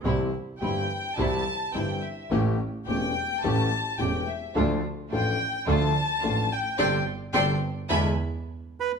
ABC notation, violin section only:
X:1
M:4/4
L:1/8
Q:1/4=107
K:C
V:1 name="Violin section"
z2 g2 a2 g e | z2 g2 a2 g e | z2 g2 a3 g | [dgc'] z [dgc'] z [e^gb] z3 |]